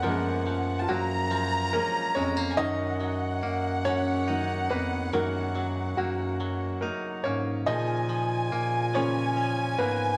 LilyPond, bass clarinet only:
\new Staff \with { instrumentName = "Bass clarinet" } { \clef bass \time 6/8 \key fis \major \tempo 4. = 47 fis,4 fis,4 r8 eis,8 | fis,4 fis,4. eis,8 | fis,4 fis,4 r8 gis,8 | ais,4 ais,4. gis,8 | }